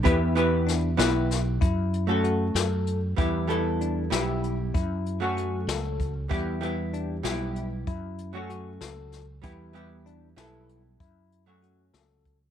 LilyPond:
<<
  \new Staff \with { instrumentName = "Tine electric piano" } { \time 5/8 \key e \dorian \tempo 4 = 96 e'4 d'8 e'4 | e'4 fis'8 a'4 | e'4 d'8 e'4 | e'4 fis'8 a'4 |
e'4 d'8 e'4 | e'4 fis'8 a'4 | e'4 d'8 e'4 | e'4 fis'8 a'4 | }
  \new Staff \with { instrumentName = "Hollow-body jazz guitar" } { \time 5/8 \key e \dorian <b e' g' b'>8 <b e' g' b'>4 <b e' g' b'>4 | r8. <a cis' fis' a'>4.~ <a cis' fis' a'>16 | <g b e' g'>8 <g b e' a'>4 <g b e' g'>4 | r8. <fis a cis' fis'>4.~ <fis a cis' fis'>16 |
<g b e' g'>8 <g b e' g'>4 <g b e' g'>4 | r8. <fis a cis' fis'>4.~ <fis a cis' fis'>16 | <g b e' g'>8 <g b e' g'>4 <g b e' a'>4 | r8. <fis a cis' fis'>4.~ <fis a cis' fis'>16 | }
  \new Staff \with { instrumentName = "Fretless electric bass" } { \clef bass \time 5/8 \key e \dorian e,4. b,,4 | fis,4. fis,4 | e,4. b,,4 | fis,4. cis,4 |
e,4. b,,4 | fis,4. cis,4 | e,4. b,,4 | fis,4. cis,4 | }
  \new DrumStaff \with { instrumentName = "Drums" } \drummode { \time 5/8 <hh bd>8 hh8 <hh sn>8 <hh sn>8 <hh sn>8 | <hh bd>8 hh8 hh8 <hh sn>8 hh8 | <hh bd>8 hh8 hh8 <hh sn>8 hh8 | <hh bd>8 hh8 hh8 <hh sn>8 <hh bd>8 |
<hh bd>8 hh8 hh8 <hh sn>8 hh8 | <hh bd>8 hh8 hh8 <hh sn>8 <hh sn>8 | <hh bd>8 hh8 hh8 <hh sn>8 hh8 | <hh bd>8 hh8 hh8 <hh sn>8 <hh bd>8 | }
>>